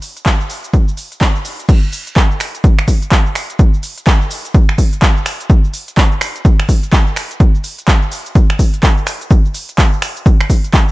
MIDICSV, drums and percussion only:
0, 0, Header, 1, 2, 480
1, 0, Start_track
1, 0, Tempo, 476190
1, 1700, Time_signature, 4, 2, 24, 8
1, 11004, End_track
2, 0, Start_track
2, 0, Title_t, "Drums"
2, 21, Note_on_c, 9, 46, 91
2, 22, Note_on_c, 9, 82, 74
2, 122, Note_off_c, 9, 46, 0
2, 123, Note_off_c, 9, 82, 0
2, 168, Note_on_c, 9, 42, 65
2, 169, Note_on_c, 9, 82, 33
2, 261, Note_off_c, 9, 42, 0
2, 261, Note_on_c, 9, 36, 96
2, 261, Note_on_c, 9, 42, 50
2, 262, Note_off_c, 9, 82, 0
2, 262, Note_on_c, 9, 82, 43
2, 264, Note_on_c, 9, 39, 109
2, 362, Note_off_c, 9, 36, 0
2, 362, Note_off_c, 9, 42, 0
2, 363, Note_off_c, 9, 82, 0
2, 364, Note_off_c, 9, 39, 0
2, 409, Note_on_c, 9, 82, 29
2, 501, Note_on_c, 9, 46, 95
2, 502, Note_off_c, 9, 82, 0
2, 502, Note_on_c, 9, 82, 77
2, 602, Note_off_c, 9, 46, 0
2, 602, Note_off_c, 9, 82, 0
2, 647, Note_on_c, 9, 42, 63
2, 648, Note_on_c, 9, 82, 34
2, 741, Note_off_c, 9, 42, 0
2, 741, Note_off_c, 9, 82, 0
2, 741, Note_on_c, 9, 36, 110
2, 741, Note_on_c, 9, 42, 52
2, 741, Note_on_c, 9, 82, 45
2, 841, Note_off_c, 9, 42, 0
2, 842, Note_off_c, 9, 36, 0
2, 842, Note_off_c, 9, 82, 0
2, 889, Note_on_c, 9, 82, 30
2, 981, Note_off_c, 9, 82, 0
2, 981, Note_on_c, 9, 46, 90
2, 981, Note_on_c, 9, 82, 75
2, 1081, Note_off_c, 9, 46, 0
2, 1082, Note_off_c, 9, 82, 0
2, 1127, Note_on_c, 9, 42, 62
2, 1128, Note_on_c, 9, 82, 32
2, 1221, Note_off_c, 9, 42, 0
2, 1221, Note_off_c, 9, 82, 0
2, 1221, Note_on_c, 9, 36, 93
2, 1221, Note_on_c, 9, 42, 51
2, 1221, Note_on_c, 9, 82, 44
2, 1223, Note_on_c, 9, 39, 111
2, 1321, Note_off_c, 9, 42, 0
2, 1322, Note_off_c, 9, 36, 0
2, 1322, Note_off_c, 9, 82, 0
2, 1324, Note_off_c, 9, 39, 0
2, 1369, Note_on_c, 9, 82, 29
2, 1461, Note_on_c, 9, 46, 91
2, 1462, Note_off_c, 9, 82, 0
2, 1462, Note_on_c, 9, 82, 73
2, 1562, Note_off_c, 9, 46, 0
2, 1563, Note_off_c, 9, 82, 0
2, 1608, Note_on_c, 9, 42, 64
2, 1609, Note_on_c, 9, 82, 32
2, 1701, Note_off_c, 9, 42, 0
2, 1701, Note_on_c, 9, 36, 122
2, 1701, Note_on_c, 9, 42, 57
2, 1701, Note_on_c, 9, 49, 101
2, 1702, Note_off_c, 9, 82, 0
2, 1702, Note_on_c, 9, 82, 46
2, 1802, Note_off_c, 9, 36, 0
2, 1802, Note_off_c, 9, 42, 0
2, 1802, Note_off_c, 9, 49, 0
2, 1803, Note_off_c, 9, 82, 0
2, 1849, Note_on_c, 9, 82, 22
2, 1941, Note_on_c, 9, 46, 104
2, 1942, Note_off_c, 9, 82, 0
2, 1942, Note_on_c, 9, 82, 76
2, 2042, Note_off_c, 9, 46, 0
2, 2043, Note_off_c, 9, 82, 0
2, 2088, Note_on_c, 9, 42, 67
2, 2089, Note_on_c, 9, 82, 34
2, 2181, Note_off_c, 9, 42, 0
2, 2181, Note_on_c, 9, 36, 121
2, 2181, Note_on_c, 9, 42, 55
2, 2182, Note_off_c, 9, 82, 0
2, 2182, Note_on_c, 9, 82, 45
2, 2183, Note_on_c, 9, 39, 123
2, 2281, Note_off_c, 9, 42, 0
2, 2282, Note_off_c, 9, 36, 0
2, 2282, Note_off_c, 9, 82, 0
2, 2284, Note_off_c, 9, 39, 0
2, 2329, Note_on_c, 9, 82, 22
2, 2421, Note_on_c, 9, 26, 79
2, 2421, Note_on_c, 9, 46, 103
2, 2422, Note_off_c, 9, 82, 0
2, 2422, Note_on_c, 9, 82, 76
2, 2522, Note_off_c, 9, 26, 0
2, 2522, Note_off_c, 9, 46, 0
2, 2523, Note_off_c, 9, 82, 0
2, 2568, Note_on_c, 9, 42, 68
2, 2568, Note_on_c, 9, 82, 34
2, 2661, Note_off_c, 9, 42, 0
2, 2661, Note_on_c, 9, 36, 124
2, 2661, Note_on_c, 9, 42, 59
2, 2662, Note_off_c, 9, 82, 0
2, 2662, Note_on_c, 9, 82, 47
2, 2762, Note_off_c, 9, 36, 0
2, 2762, Note_off_c, 9, 42, 0
2, 2763, Note_off_c, 9, 82, 0
2, 2808, Note_on_c, 9, 26, 63
2, 2809, Note_on_c, 9, 82, 22
2, 2901, Note_on_c, 9, 36, 63
2, 2901, Note_on_c, 9, 46, 105
2, 2902, Note_off_c, 9, 82, 0
2, 2902, Note_on_c, 9, 82, 79
2, 2909, Note_off_c, 9, 26, 0
2, 3002, Note_off_c, 9, 36, 0
2, 3002, Note_off_c, 9, 46, 0
2, 3003, Note_off_c, 9, 82, 0
2, 3048, Note_on_c, 9, 42, 68
2, 3048, Note_on_c, 9, 82, 34
2, 3141, Note_off_c, 9, 42, 0
2, 3141, Note_on_c, 9, 36, 117
2, 3141, Note_on_c, 9, 42, 55
2, 3142, Note_off_c, 9, 82, 0
2, 3142, Note_on_c, 9, 82, 46
2, 3143, Note_on_c, 9, 39, 124
2, 3242, Note_off_c, 9, 36, 0
2, 3242, Note_off_c, 9, 42, 0
2, 3243, Note_off_c, 9, 82, 0
2, 3244, Note_off_c, 9, 39, 0
2, 3289, Note_on_c, 9, 82, 23
2, 3381, Note_on_c, 9, 26, 79
2, 3381, Note_on_c, 9, 46, 105
2, 3382, Note_off_c, 9, 82, 0
2, 3382, Note_on_c, 9, 82, 77
2, 3482, Note_off_c, 9, 26, 0
2, 3482, Note_off_c, 9, 46, 0
2, 3483, Note_off_c, 9, 82, 0
2, 3527, Note_on_c, 9, 42, 69
2, 3528, Note_on_c, 9, 82, 34
2, 3620, Note_off_c, 9, 42, 0
2, 3620, Note_on_c, 9, 42, 53
2, 3621, Note_off_c, 9, 82, 0
2, 3621, Note_on_c, 9, 36, 125
2, 3621, Note_on_c, 9, 82, 44
2, 3721, Note_off_c, 9, 42, 0
2, 3722, Note_off_c, 9, 36, 0
2, 3722, Note_off_c, 9, 82, 0
2, 3768, Note_on_c, 9, 82, 22
2, 3861, Note_on_c, 9, 46, 110
2, 3862, Note_off_c, 9, 82, 0
2, 3862, Note_on_c, 9, 82, 74
2, 3961, Note_off_c, 9, 46, 0
2, 3962, Note_off_c, 9, 82, 0
2, 4008, Note_on_c, 9, 42, 68
2, 4009, Note_on_c, 9, 82, 33
2, 4101, Note_off_c, 9, 42, 0
2, 4101, Note_on_c, 9, 36, 123
2, 4101, Note_on_c, 9, 42, 55
2, 4102, Note_off_c, 9, 82, 0
2, 4102, Note_on_c, 9, 82, 44
2, 4103, Note_on_c, 9, 39, 124
2, 4202, Note_off_c, 9, 36, 0
2, 4202, Note_off_c, 9, 42, 0
2, 4203, Note_off_c, 9, 82, 0
2, 4204, Note_off_c, 9, 39, 0
2, 4249, Note_on_c, 9, 82, 21
2, 4341, Note_on_c, 9, 46, 106
2, 4342, Note_off_c, 9, 82, 0
2, 4342, Note_on_c, 9, 82, 77
2, 4442, Note_off_c, 9, 46, 0
2, 4443, Note_off_c, 9, 82, 0
2, 4488, Note_on_c, 9, 42, 69
2, 4489, Note_on_c, 9, 82, 33
2, 4581, Note_off_c, 9, 42, 0
2, 4581, Note_on_c, 9, 36, 127
2, 4581, Note_on_c, 9, 42, 55
2, 4582, Note_off_c, 9, 82, 0
2, 4582, Note_on_c, 9, 82, 45
2, 4682, Note_off_c, 9, 36, 0
2, 4682, Note_off_c, 9, 42, 0
2, 4683, Note_off_c, 9, 82, 0
2, 4728, Note_on_c, 9, 26, 63
2, 4729, Note_on_c, 9, 82, 22
2, 4821, Note_on_c, 9, 36, 65
2, 4821, Note_on_c, 9, 46, 109
2, 4822, Note_off_c, 9, 82, 0
2, 4822, Note_on_c, 9, 82, 75
2, 4829, Note_off_c, 9, 26, 0
2, 4922, Note_off_c, 9, 36, 0
2, 4922, Note_off_c, 9, 46, 0
2, 4923, Note_off_c, 9, 82, 0
2, 4968, Note_on_c, 9, 42, 64
2, 4969, Note_on_c, 9, 82, 33
2, 5061, Note_on_c, 9, 36, 125
2, 5062, Note_off_c, 9, 42, 0
2, 5062, Note_on_c, 9, 42, 53
2, 5063, Note_off_c, 9, 82, 0
2, 5063, Note_on_c, 9, 82, 45
2, 5064, Note_on_c, 9, 39, 126
2, 5162, Note_off_c, 9, 36, 0
2, 5162, Note_off_c, 9, 42, 0
2, 5163, Note_off_c, 9, 82, 0
2, 5165, Note_off_c, 9, 39, 0
2, 5209, Note_on_c, 9, 82, 22
2, 5301, Note_on_c, 9, 26, 78
2, 5301, Note_on_c, 9, 46, 109
2, 5302, Note_off_c, 9, 82, 0
2, 5302, Note_on_c, 9, 82, 73
2, 5402, Note_off_c, 9, 26, 0
2, 5402, Note_off_c, 9, 46, 0
2, 5403, Note_off_c, 9, 82, 0
2, 5448, Note_on_c, 9, 42, 67
2, 5449, Note_on_c, 9, 82, 33
2, 5541, Note_off_c, 9, 42, 0
2, 5541, Note_on_c, 9, 36, 127
2, 5541, Note_on_c, 9, 42, 53
2, 5542, Note_off_c, 9, 82, 0
2, 5542, Note_on_c, 9, 82, 43
2, 5642, Note_off_c, 9, 36, 0
2, 5642, Note_off_c, 9, 42, 0
2, 5643, Note_off_c, 9, 82, 0
2, 5689, Note_on_c, 9, 82, 21
2, 5781, Note_on_c, 9, 46, 114
2, 5782, Note_off_c, 9, 82, 0
2, 5782, Note_on_c, 9, 82, 76
2, 5882, Note_off_c, 9, 46, 0
2, 5883, Note_off_c, 9, 82, 0
2, 5928, Note_on_c, 9, 42, 65
2, 5929, Note_on_c, 9, 82, 31
2, 6021, Note_off_c, 9, 42, 0
2, 6021, Note_on_c, 9, 36, 126
2, 6021, Note_on_c, 9, 42, 53
2, 6022, Note_off_c, 9, 82, 0
2, 6022, Note_on_c, 9, 82, 43
2, 6024, Note_on_c, 9, 39, 127
2, 6122, Note_off_c, 9, 36, 0
2, 6122, Note_off_c, 9, 42, 0
2, 6123, Note_off_c, 9, 82, 0
2, 6124, Note_off_c, 9, 39, 0
2, 6169, Note_on_c, 9, 82, 21
2, 6261, Note_on_c, 9, 26, 85
2, 6261, Note_on_c, 9, 46, 109
2, 6262, Note_off_c, 9, 82, 0
2, 6262, Note_on_c, 9, 82, 73
2, 6362, Note_off_c, 9, 26, 0
2, 6362, Note_off_c, 9, 46, 0
2, 6363, Note_off_c, 9, 82, 0
2, 6408, Note_on_c, 9, 42, 66
2, 6409, Note_on_c, 9, 82, 33
2, 6501, Note_off_c, 9, 42, 0
2, 6501, Note_on_c, 9, 36, 127
2, 6501, Note_on_c, 9, 42, 53
2, 6502, Note_off_c, 9, 82, 0
2, 6502, Note_on_c, 9, 82, 45
2, 6602, Note_off_c, 9, 36, 0
2, 6602, Note_off_c, 9, 42, 0
2, 6603, Note_off_c, 9, 82, 0
2, 6648, Note_on_c, 9, 26, 65
2, 6649, Note_on_c, 9, 82, 21
2, 6741, Note_on_c, 9, 36, 67
2, 6741, Note_on_c, 9, 46, 109
2, 6742, Note_off_c, 9, 82, 0
2, 6742, Note_on_c, 9, 82, 76
2, 6749, Note_off_c, 9, 26, 0
2, 6842, Note_off_c, 9, 36, 0
2, 6842, Note_off_c, 9, 46, 0
2, 6843, Note_off_c, 9, 82, 0
2, 6888, Note_on_c, 9, 42, 66
2, 6889, Note_on_c, 9, 82, 32
2, 6981, Note_on_c, 9, 36, 124
2, 6982, Note_off_c, 9, 42, 0
2, 6982, Note_off_c, 9, 82, 0
2, 6982, Note_on_c, 9, 42, 51
2, 6982, Note_on_c, 9, 82, 43
2, 6984, Note_on_c, 9, 39, 119
2, 7082, Note_off_c, 9, 36, 0
2, 7082, Note_off_c, 9, 42, 0
2, 7083, Note_off_c, 9, 82, 0
2, 7085, Note_off_c, 9, 39, 0
2, 7129, Note_on_c, 9, 82, 22
2, 7221, Note_on_c, 9, 26, 80
2, 7221, Note_on_c, 9, 46, 107
2, 7222, Note_off_c, 9, 82, 0
2, 7222, Note_on_c, 9, 82, 73
2, 7322, Note_off_c, 9, 26, 0
2, 7322, Note_off_c, 9, 46, 0
2, 7323, Note_off_c, 9, 82, 0
2, 7368, Note_on_c, 9, 42, 64
2, 7369, Note_on_c, 9, 82, 32
2, 7461, Note_off_c, 9, 42, 0
2, 7461, Note_on_c, 9, 36, 127
2, 7461, Note_on_c, 9, 42, 51
2, 7462, Note_off_c, 9, 82, 0
2, 7462, Note_on_c, 9, 82, 44
2, 7562, Note_off_c, 9, 36, 0
2, 7562, Note_off_c, 9, 42, 0
2, 7563, Note_off_c, 9, 82, 0
2, 7609, Note_on_c, 9, 82, 21
2, 7701, Note_off_c, 9, 82, 0
2, 7701, Note_on_c, 9, 46, 110
2, 7701, Note_on_c, 9, 82, 74
2, 7801, Note_off_c, 9, 46, 0
2, 7802, Note_off_c, 9, 82, 0
2, 7848, Note_on_c, 9, 42, 64
2, 7849, Note_on_c, 9, 82, 33
2, 7941, Note_off_c, 9, 42, 0
2, 7941, Note_on_c, 9, 36, 124
2, 7941, Note_on_c, 9, 42, 50
2, 7942, Note_off_c, 9, 82, 0
2, 7942, Note_on_c, 9, 82, 45
2, 7943, Note_on_c, 9, 39, 116
2, 8042, Note_off_c, 9, 36, 0
2, 8042, Note_off_c, 9, 42, 0
2, 8042, Note_off_c, 9, 82, 0
2, 8044, Note_off_c, 9, 39, 0
2, 8088, Note_on_c, 9, 82, 21
2, 8181, Note_on_c, 9, 46, 109
2, 8182, Note_off_c, 9, 82, 0
2, 8182, Note_on_c, 9, 82, 76
2, 8282, Note_off_c, 9, 46, 0
2, 8283, Note_off_c, 9, 82, 0
2, 8328, Note_on_c, 9, 42, 64
2, 8328, Note_on_c, 9, 82, 33
2, 8421, Note_off_c, 9, 42, 0
2, 8421, Note_off_c, 9, 82, 0
2, 8421, Note_on_c, 9, 36, 127
2, 8421, Note_on_c, 9, 42, 51
2, 8421, Note_on_c, 9, 82, 46
2, 8521, Note_off_c, 9, 42, 0
2, 8522, Note_off_c, 9, 36, 0
2, 8522, Note_off_c, 9, 82, 0
2, 8568, Note_on_c, 9, 26, 67
2, 8569, Note_on_c, 9, 82, 22
2, 8661, Note_off_c, 9, 82, 0
2, 8661, Note_on_c, 9, 36, 66
2, 8661, Note_on_c, 9, 46, 108
2, 8661, Note_on_c, 9, 82, 76
2, 8669, Note_off_c, 9, 26, 0
2, 8761, Note_off_c, 9, 46, 0
2, 8762, Note_off_c, 9, 36, 0
2, 8762, Note_off_c, 9, 82, 0
2, 8807, Note_on_c, 9, 42, 63
2, 8808, Note_on_c, 9, 82, 32
2, 8900, Note_off_c, 9, 42, 0
2, 8900, Note_on_c, 9, 42, 51
2, 8901, Note_off_c, 9, 82, 0
2, 8901, Note_on_c, 9, 36, 118
2, 8901, Note_on_c, 9, 82, 44
2, 8903, Note_on_c, 9, 39, 118
2, 9001, Note_off_c, 9, 42, 0
2, 9002, Note_off_c, 9, 36, 0
2, 9002, Note_off_c, 9, 82, 0
2, 9004, Note_off_c, 9, 39, 0
2, 9048, Note_on_c, 9, 82, 22
2, 9140, Note_on_c, 9, 26, 85
2, 9140, Note_on_c, 9, 46, 111
2, 9141, Note_off_c, 9, 82, 0
2, 9141, Note_on_c, 9, 82, 75
2, 9241, Note_off_c, 9, 26, 0
2, 9241, Note_off_c, 9, 46, 0
2, 9242, Note_off_c, 9, 82, 0
2, 9287, Note_on_c, 9, 42, 63
2, 9288, Note_on_c, 9, 82, 33
2, 9381, Note_off_c, 9, 42, 0
2, 9381, Note_off_c, 9, 82, 0
2, 9381, Note_on_c, 9, 36, 124
2, 9381, Note_on_c, 9, 42, 52
2, 9381, Note_on_c, 9, 82, 45
2, 9481, Note_off_c, 9, 42, 0
2, 9482, Note_off_c, 9, 36, 0
2, 9482, Note_off_c, 9, 82, 0
2, 9528, Note_on_c, 9, 82, 23
2, 9621, Note_on_c, 9, 46, 109
2, 9622, Note_off_c, 9, 82, 0
2, 9622, Note_on_c, 9, 82, 81
2, 9721, Note_off_c, 9, 46, 0
2, 9722, Note_off_c, 9, 82, 0
2, 9768, Note_on_c, 9, 42, 62
2, 9769, Note_on_c, 9, 82, 34
2, 9861, Note_off_c, 9, 42, 0
2, 9861, Note_on_c, 9, 36, 121
2, 9861, Note_on_c, 9, 42, 51
2, 9862, Note_off_c, 9, 82, 0
2, 9862, Note_on_c, 9, 82, 47
2, 9864, Note_on_c, 9, 39, 115
2, 9962, Note_off_c, 9, 36, 0
2, 9962, Note_off_c, 9, 42, 0
2, 9963, Note_off_c, 9, 82, 0
2, 9965, Note_off_c, 9, 39, 0
2, 10009, Note_on_c, 9, 82, 22
2, 10102, Note_off_c, 9, 82, 0
2, 10102, Note_on_c, 9, 26, 88
2, 10102, Note_on_c, 9, 46, 104
2, 10102, Note_on_c, 9, 82, 79
2, 10202, Note_off_c, 9, 26, 0
2, 10202, Note_off_c, 9, 46, 0
2, 10203, Note_off_c, 9, 82, 0
2, 10248, Note_on_c, 9, 42, 65
2, 10249, Note_on_c, 9, 82, 34
2, 10341, Note_off_c, 9, 42, 0
2, 10341, Note_on_c, 9, 36, 125
2, 10341, Note_on_c, 9, 42, 52
2, 10342, Note_off_c, 9, 82, 0
2, 10342, Note_on_c, 9, 82, 47
2, 10442, Note_off_c, 9, 36, 0
2, 10442, Note_off_c, 9, 42, 0
2, 10443, Note_off_c, 9, 82, 0
2, 10489, Note_on_c, 9, 26, 70
2, 10490, Note_on_c, 9, 82, 23
2, 10581, Note_on_c, 9, 36, 63
2, 10582, Note_on_c, 9, 46, 106
2, 10583, Note_off_c, 9, 82, 0
2, 10583, Note_on_c, 9, 82, 78
2, 10590, Note_off_c, 9, 26, 0
2, 10682, Note_off_c, 9, 36, 0
2, 10683, Note_off_c, 9, 46, 0
2, 10683, Note_off_c, 9, 82, 0
2, 10729, Note_on_c, 9, 42, 61
2, 10730, Note_on_c, 9, 82, 32
2, 10821, Note_on_c, 9, 36, 118
2, 10822, Note_off_c, 9, 42, 0
2, 10822, Note_on_c, 9, 42, 52
2, 10823, Note_off_c, 9, 82, 0
2, 10823, Note_on_c, 9, 82, 46
2, 10824, Note_on_c, 9, 39, 114
2, 10922, Note_off_c, 9, 36, 0
2, 10922, Note_off_c, 9, 42, 0
2, 10923, Note_off_c, 9, 82, 0
2, 10925, Note_off_c, 9, 39, 0
2, 10969, Note_on_c, 9, 82, 23
2, 11004, Note_off_c, 9, 82, 0
2, 11004, End_track
0, 0, End_of_file